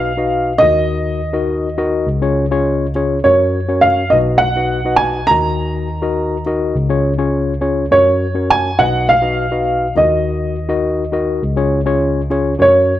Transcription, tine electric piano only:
0.00 0.57 B1 medium
0.00 0.57 B2 medium
0.00 0.11 D#4 medium
0.00 0.11 F#4 medium
0.00 0.11 B4 medium
0.00 0.12 D#5 medium
0.17 0.52 D#4 medium
0.17 0.52 F#4 medium
0.17 0.52 B4 medium
0.17 0.52 D#5 medium
0.62 2.04 D#2 medium
0.62 2.04 D#3 medium
0.62 1.20 D#4 medium
0.62 1.20 F#4 medium
0.62 1.20 A#4 medium
0.62 1.20 D#5 medium
1.33 1.68 D#4 medium
1.33 1.68 F#4 medium
1.33 1.68 A#4 medium
1.33 1.68 D#5 medium
1.78 2.07 D#4 medium
1.78 2.07 F#4 medium
1.78 2.08 A#4 medium
1.78 2.08 D#5 medium
2.07 3.20 C#2 medium
2.07 3.20 C#3 medium
2.22 2.45 C#4 medium
2.22 2.45 F4 medium
2.22 2.45 G#4 medium
2.22 2.45 C#5 medium
2.51 2.86 C#4 medium
2.51 2.86 F4 medium
2.51 2.86 G#4 medium
2.51 2.86 C#5 loud
2.95 3.18 C#4 medium
2.95 3.18 F4 medium
2.95 3.19 G#4 medium
2.95 3.19 C#5 medium
3.25 4.09 F#2 medium
3.25 3.59 C#4 medium
3.25 3.59 F#4 medium
3.25 3.59 A#4 medium
3.25 3.59 C#5 medium
3.68 4.03 C#4 medium
3.68 4.03 F#4 medium
3.68 4.03 A#4 medium
3.68 4.03 C#5 medium
4.12 5.25 B1 medium
4.12 5.25 B2 medium
4.12 4.47 D#4 medium
4.12 4.47 F#4 medium
4.12 4.47 B4 medium
4.12 4.48 D#5 medium
4.56 4.79 D#4 medium
4.56 4.79 F#4 medium
4.56 4.79 B4 medium
4.56 4.79 D#5 medium
4.85 5.19 D#4 medium
4.85 5.19 F#4 medium
4.85 5.19 B4 medium
4.85 5.20 D#5 medium
5.30 6.72 D#2 medium
5.30 6.72 D#3 medium
5.30 5.88 D#4 medium
5.30 5.88 F#4 medium
5.30 5.88 A#4 medium
5.30 5.88 D#5 medium
6.02 6.36 D#4 medium
6.02 6.36 F#4 medium
6.02 6.36 A#4 medium
6.02 6.37 D#5 medium
6.46 6.75 D#4 medium
6.46 6.75 F#4 medium
6.46 6.76 A#4 medium
6.46 6.76 D#5 medium
6.75 7.88 C#2 medium
6.75 7.88 C#3 medium
6.89 7.12 C#4 medium
6.89 7.13 F4 medium
6.89 7.13 G#4 medium
6.89 7.13 C#5 medium
7.18 7.53 C#4 medium
7.18 7.53 F4 medium
7.18 7.53 G#4 medium
7.18 7.53 C#5 medium
7.61 7.85 C#4 medium
7.61 7.85 F4 medium
7.61 7.85 G#4 medium
7.61 7.85 C#5 medium
7.91 8.75 F#2 medium
7.91 8.26 C#4 medium
7.91 8.26 F#4 medium
7.91 8.26 A#4 medium
7.91 8.26 C#5 medium
8.35 8.70 C#4 medium
8.35 8.70 F#4 medium
8.35 8.70 A#4 medium
8.35 8.70 C#5 medium
8.79 9.92 B1 medium
8.79 9.92 B2 medium
8.79 9.14 D#4 medium
8.79 9.14 F#4 medium
8.79 9.14 B4 medium
8.79 9.15 D#5 medium
9.22 9.46 D#4 medium
9.22 9.45 F#4 medium
9.22 9.46 B4 medium
9.22 9.46 D#5 medium
9.51 9.86 D#4 medium
9.51 9.86 F#4 medium
9.51 9.86 B4 medium
9.51 9.87 D#5 medium
9.95 11.39 D#2 medium
9.95 11.38 D#3 medium
9.95 10.54 D#4 medium
9.95 10.03 F4 medium
9.95 10.55 A#4 medium
9.95 10.55 D#5 medium
10.02 10.58 F#4 medium
10.69 11.03 D#4 medium
10.69 11.03 F#4 medium
10.69 11.04 A#4 medium
10.69 11.04 D#5 medium
11.12 11.42 D#4 medium
11.12 11.42 F#4 medium
11.12 11.42 A#4 medium
11.12 11.43 D#5 medium
11.43 12.56 C#2 medium
11.43 12.56 C#3 medium
11.56 11.80 C#4 medium
11.56 11.80 F4 medium
11.56 11.80 G#4 medium
11.56 11.80 C#5 medium
11.86 12.20 C#4 medium
11.86 12.21 F4 medium
11.86 12.21 G#4 medium
11.86 12.21 C#5 medium
12.30 12.53 C#4 medium
12.30 12.53 F4 medium
12.30 12.53 G#4 medium
12.30 12.54 C#5 medium
12.59 13.00 F#2 medium
12.59 12.93 C#4 medium
12.59 12.93 F#4 medium
12.59 12.94 A#4 medium
12.59 12.94 C#5 medium

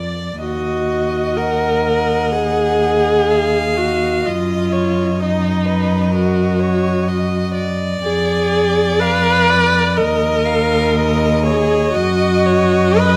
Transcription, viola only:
0.40 1.39 F#4 medium
1.37 2.34 A#4 medium
2.32 3.79 G#4 loud
3.78 4.28 F#4 medium
4.26 5.22 F4 medium
5.21 6.14 D#4 medium
6.14 7.53 F#4 medium
8.04 9.02 G#4 loud
9.00 9.99 B4 loud
9.97 11.45 A#4 medium
11.44 11.93 G#4 medium
11.93 13.01 F#4 loud
12.99 13.17 B4 loud

